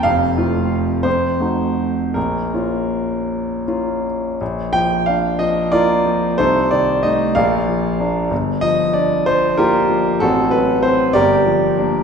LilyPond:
<<
  \new Staff \with { instrumentName = "Grand piano" } { \time 6/8 \key bes \minor \tempo 4. = 61 f''4. c''4. | bes'2~ bes'8 r8 | \key bes \major r8 g''8 f''8 ees''8 <f' bes' d''>4 | <ees' a' c''>8 d''8 ees''8 <bes' d'' f''>4. |
r8 ees''8 d''8 c''8 <f' g' bes'>4 | <c' fis' a'>8 ces''8 c''8 <g' bes' d''>4. | }
  \new Staff \with { instrumentName = "Grand piano" } { \time 6/8 \key bes \minor <f,, f,>8 <a c' f'>4 f,8 <a ees' ges'>4 | bes,,8 <bes des' f'>4. <bes des' f'>4 | \key bes \major bes,,8 f8 d'8 f8 bes8 f8 | c,8 ees8 <a ees'>8 bes,,8 f8 <bes d'>8 |
g,,8 f8 d'8 f8 bes8 f8 | a,,8 fis8 c'8 g,,8 f8 <bes d'>8 | }
>>